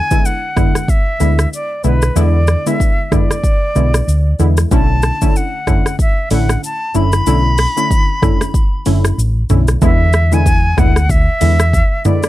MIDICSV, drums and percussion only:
0, 0, Header, 1, 2, 480
1, 0, Start_track
1, 0, Tempo, 638298
1, 1625, Time_signature, 4, 2, 24, 8
1, 9241, End_track
2, 0, Start_track
2, 0, Title_t, "Drums"
2, 83, Note_on_c, 9, 82, 75
2, 84, Note_on_c, 9, 36, 92
2, 158, Note_off_c, 9, 82, 0
2, 159, Note_off_c, 9, 36, 0
2, 190, Note_on_c, 9, 82, 73
2, 265, Note_off_c, 9, 82, 0
2, 426, Note_on_c, 9, 36, 100
2, 427, Note_on_c, 9, 37, 84
2, 427, Note_on_c, 9, 45, 86
2, 429, Note_on_c, 9, 82, 51
2, 501, Note_off_c, 9, 36, 0
2, 502, Note_off_c, 9, 37, 0
2, 503, Note_off_c, 9, 45, 0
2, 504, Note_off_c, 9, 82, 0
2, 566, Note_on_c, 9, 37, 92
2, 569, Note_on_c, 9, 82, 77
2, 641, Note_off_c, 9, 37, 0
2, 645, Note_off_c, 9, 82, 0
2, 664, Note_on_c, 9, 36, 93
2, 669, Note_on_c, 9, 82, 70
2, 739, Note_off_c, 9, 36, 0
2, 744, Note_off_c, 9, 82, 0
2, 904, Note_on_c, 9, 82, 54
2, 979, Note_off_c, 9, 82, 0
2, 1044, Note_on_c, 9, 37, 99
2, 1045, Note_on_c, 9, 82, 81
2, 1119, Note_off_c, 9, 37, 0
2, 1120, Note_off_c, 9, 82, 0
2, 1153, Note_on_c, 9, 82, 68
2, 1228, Note_off_c, 9, 82, 0
2, 1383, Note_on_c, 9, 82, 46
2, 1458, Note_off_c, 9, 82, 0
2, 1519, Note_on_c, 9, 82, 80
2, 1524, Note_on_c, 9, 37, 87
2, 1594, Note_off_c, 9, 82, 0
2, 1600, Note_off_c, 9, 37, 0
2, 1626, Note_on_c, 9, 82, 75
2, 1701, Note_off_c, 9, 82, 0
2, 1860, Note_on_c, 9, 82, 59
2, 1866, Note_on_c, 9, 37, 99
2, 1935, Note_off_c, 9, 82, 0
2, 1941, Note_off_c, 9, 37, 0
2, 2005, Note_on_c, 9, 82, 78
2, 2080, Note_off_c, 9, 82, 0
2, 2106, Note_on_c, 9, 36, 87
2, 2112, Note_on_c, 9, 82, 75
2, 2182, Note_off_c, 9, 36, 0
2, 2187, Note_off_c, 9, 82, 0
2, 2345, Note_on_c, 9, 36, 92
2, 2346, Note_on_c, 9, 37, 82
2, 2346, Note_on_c, 9, 45, 88
2, 2348, Note_on_c, 9, 82, 53
2, 2421, Note_off_c, 9, 36, 0
2, 2421, Note_off_c, 9, 37, 0
2, 2422, Note_off_c, 9, 45, 0
2, 2423, Note_off_c, 9, 82, 0
2, 2487, Note_on_c, 9, 37, 93
2, 2490, Note_on_c, 9, 82, 74
2, 2562, Note_off_c, 9, 37, 0
2, 2565, Note_off_c, 9, 82, 0
2, 2584, Note_on_c, 9, 36, 90
2, 2587, Note_on_c, 9, 82, 68
2, 2659, Note_off_c, 9, 36, 0
2, 2663, Note_off_c, 9, 82, 0
2, 2824, Note_on_c, 9, 82, 53
2, 2899, Note_off_c, 9, 82, 0
2, 2964, Note_on_c, 9, 37, 102
2, 2965, Note_on_c, 9, 82, 86
2, 3040, Note_off_c, 9, 37, 0
2, 3041, Note_off_c, 9, 82, 0
2, 3072, Note_on_c, 9, 82, 69
2, 3148, Note_off_c, 9, 82, 0
2, 3303, Note_on_c, 9, 82, 50
2, 3378, Note_off_c, 9, 82, 0
2, 3438, Note_on_c, 9, 82, 80
2, 3443, Note_on_c, 9, 37, 92
2, 3513, Note_off_c, 9, 82, 0
2, 3518, Note_off_c, 9, 37, 0
2, 3545, Note_on_c, 9, 36, 119
2, 3545, Note_on_c, 9, 82, 76
2, 3620, Note_off_c, 9, 36, 0
2, 3620, Note_off_c, 9, 82, 0
2, 3779, Note_on_c, 9, 82, 58
2, 3785, Note_on_c, 9, 37, 101
2, 3854, Note_off_c, 9, 82, 0
2, 3860, Note_off_c, 9, 37, 0
2, 3923, Note_on_c, 9, 82, 80
2, 3924, Note_on_c, 9, 36, 95
2, 3998, Note_off_c, 9, 82, 0
2, 3999, Note_off_c, 9, 36, 0
2, 4030, Note_on_c, 9, 82, 72
2, 4105, Note_off_c, 9, 82, 0
2, 4265, Note_on_c, 9, 36, 92
2, 4266, Note_on_c, 9, 37, 85
2, 4266, Note_on_c, 9, 45, 89
2, 4268, Note_on_c, 9, 82, 53
2, 4340, Note_off_c, 9, 36, 0
2, 4341, Note_off_c, 9, 37, 0
2, 4341, Note_off_c, 9, 45, 0
2, 4343, Note_off_c, 9, 82, 0
2, 4406, Note_on_c, 9, 37, 95
2, 4409, Note_on_c, 9, 82, 74
2, 4481, Note_off_c, 9, 37, 0
2, 4485, Note_off_c, 9, 82, 0
2, 4504, Note_on_c, 9, 36, 89
2, 4508, Note_on_c, 9, 82, 67
2, 4579, Note_off_c, 9, 36, 0
2, 4583, Note_off_c, 9, 82, 0
2, 4742, Note_on_c, 9, 46, 57
2, 4742, Note_on_c, 9, 82, 55
2, 4817, Note_off_c, 9, 46, 0
2, 4817, Note_off_c, 9, 82, 0
2, 4884, Note_on_c, 9, 37, 101
2, 4885, Note_on_c, 9, 82, 81
2, 4959, Note_off_c, 9, 37, 0
2, 4960, Note_off_c, 9, 82, 0
2, 4992, Note_on_c, 9, 82, 68
2, 5067, Note_off_c, 9, 82, 0
2, 5223, Note_on_c, 9, 82, 49
2, 5298, Note_off_c, 9, 82, 0
2, 5358, Note_on_c, 9, 82, 81
2, 5363, Note_on_c, 9, 37, 91
2, 5433, Note_off_c, 9, 82, 0
2, 5438, Note_off_c, 9, 37, 0
2, 5463, Note_on_c, 9, 82, 79
2, 5539, Note_off_c, 9, 82, 0
2, 5700, Note_on_c, 9, 46, 59
2, 5700, Note_on_c, 9, 82, 58
2, 5706, Note_on_c, 9, 37, 101
2, 5775, Note_off_c, 9, 46, 0
2, 5775, Note_off_c, 9, 82, 0
2, 5781, Note_off_c, 9, 37, 0
2, 5846, Note_on_c, 9, 82, 79
2, 5921, Note_off_c, 9, 82, 0
2, 5946, Note_on_c, 9, 36, 95
2, 5950, Note_on_c, 9, 82, 76
2, 6021, Note_off_c, 9, 36, 0
2, 6026, Note_off_c, 9, 82, 0
2, 6185, Note_on_c, 9, 36, 100
2, 6187, Note_on_c, 9, 37, 89
2, 6187, Note_on_c, 9, 45, 88
2, 6189, Note_on_c, 9, 82, 54
2, 6260, Note_off_c, 9, 36, 0
2, 6262, Note_off_c, 9, 37, 0
2, 6263, Note_off_c, 9, 45, 0
2, 6264, Note_off_c, 9, 82, 0
2, 6325, Note_on_c, 9, 37, 95
2, 6328, Note_on_c, 9, 82, 77
2, 6400, Note_off_c, 9, 37, 0
2, 6403, Note_off_c, 9, 82, 0
2, 6423, Note_on_c, 9, 36, 93
2, 6427, Note_on_c, 9, 82, 66
2, 6498, Note_off_c, 9, 36, 0
2, 6502, Note_off_c, 9, 82, 0
2, 6661, Note_on_c, 9, 46, 57
2, 6661, Note_on_c, 9, 82, 54
2, 6736, Note_off_c, 9, 46, 0
2, 6736, Note_off_c, 9, 82, 0
2, 6803, Note_on_c, 9, 37, 103
2, 6804, Note_on_c, 9, 82, 84
2, 6878, Note_off_c, 9, 37, 0
2, 6879, Note_off_c, 9, 82, 0
2, 6912, Note_on_c, 9, 82, 70
2, 6987, Note_off_c, 9, 82, 0
2, 7141, Note_on_c, 9, 82, 49
2, 7144, Note_on_c, 9, 45, 101
2, 7216, Note_off_c, 9, 82, 0
2, 7219, Note_off_c, 9, 45, 0
2, 7277, Note_on_c, 9, 82, 80
2, 7283, Note_on_c, 9, 37, 90
2, 7353, Note_off_c, 9, 82, 0
2, 7358, Note_off_c, 9, 37, 0
2, 7382, Note_on_c, 9, 82, 81
2, 7383, Note_on_c, 9, 36, 120
2, 7458, Note_off_c, 9, 36, 0
2, 7458, Note_off_c, 9, 82, 0
2, 7617, Note_on_c, 9, 82, 56
2, 7623, Note_on_c, 9, 37, 109
2, 7693, Note_off_c, 9, 82, 0
2, 7699, Note_off_c, 9, 37, 0
2, 7762, Note_on_c, 9, 82, 80
2, 7838, Note_off_c, 9, 82, 0
2, 7865, Note_on_c, 9, 36, 93
2, 7868, Note_on_c, 9, 82, 76
2, 7940, Note_off_c, 9, 36, 0
2, 7943, Note_off_c, 9, 82, 0
2, 8105, Note_on_c, 9, 36, 99
2, 8105, Note_on_c, 9, 37, 83
2, 8105, Note_on_c, 9, 45, 91
2, 8107, Note_on_c, 9, 82, 53
2, 8180, Note_off_c, 9, 36, 0
2, 8180, Note_off_c, 9, 37, 0
2, 8180, Note_off_c, 9, 45, 0
2, 8182, Note_off_c, 9, 82, 0
2, 8243, Note_on_c, 9, 37, 96
2, 8247, Note_on_c, 9, 82, 77
2, 8319, Note_off_c, 9, 37, 0
2, 8322, Note_off_c, 9, 82, 0
2, 8343, Note_on_c, 9, 36, 108
2, 8346, Note_on_c, 9, 82, 70
2, 8418, Note_off_c, 9, 36, 0
2, 8421, Note_off_c, 9, 82, 0
2, 8580, Note_on_c, 9, 46, 56
2, 8580, Note_on_c, 9, 82, 55
2, 8655, Note_off_c, 9, 46, 0
2, 8655, Note_off_c, 9, 82, 0
2, 8721, Note_on_c, 9, 37, 106
2, 8722, Note_on_c, 9, 82, 88
2, 8796, Note_off_c, 9, 37, 0
2, 8797, Note_off_c, 9, 82, 0
2, 8824, Note_on_c, 9, 36, 87
2, 8829, Note_on_c, 9, 82, 71
2, 8899, Note_off_c, 9, 36, 0
2, 8904, Note_off_c, 9, 82, 0
2, 9061, Note_on_c, 9, 82, 49
2, 9063, Note_on_c, 9, 45, 96
2, 9136, Note_off_c, 9, 82, 0
2, 9139, Note_off_c, 9, 45, 0
2, 9197, Note_on_c, 9, 82, 80
2, 9202, Note_on_c, 9, 37, 95
2, 9241, Note_off_c, 9, 37, 0
2, 9241, Note_off_c, 9, 82, 0
2, 9241, End_track
0, 0, End_of_file